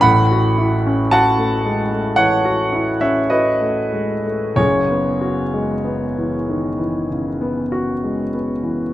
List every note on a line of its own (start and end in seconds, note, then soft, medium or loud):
0.01 2.12 A1 medium
0.01 2.13 A2 medium
0.01 1.07 F#5 medium
0.01 1.10 B5 loud
0.31 0.74 F#4 soft
0.58 1.01 E4 medium
0.86 1.28 C#4 medium
1.11 1.54 F#4 medium
1.11 2.14 F#5 medium
1.11 2.17 A5 loud
1.38 1.80 A3 soft
1.65 1.91 G#3 soft
1.92 2.34 A3 soft
2.16 2.61 E3 soft
2.16 2.97 C#5 medium
2.16 3.00 F#5 loud
2.45 2.90 F#4 medium
2.73 3.18 E4 medium
3.01 3.48 C#4 soft
3.01 3.28 C#5 medium
3.01 3.30 E5 medium
3.30 3.79 F#4 soft
3.30 4.53 B4 medium
3.30 4.57 D#5 medium
3.61 4.11 A3 soft
3.93 4.24 G#3 soft
4.26 4.58 A3 soft
4.56 7.06 F#1 soft
4.56 7.07 F#2 medium
4.56 8.30 G#4 medium
4.56 8.33 C#5 medium
4.90 5.41 B3 soft
5.21 5.72 F#4 soft
5.54 6.04 G#3 soft
5.85 6.35 B3 soft
6.17 6.67 E3 soft
6.49 6.80 D#3 soft
6.79 7.29 E3 soft
7.10 7.60 C#3 soft
7.41 7.91 B3 soft
7.72 8.21 F#4 soft
8.04 8.52 G#3 soft
8.34 8.82 B3 soft
8.63 8.94 E3 soft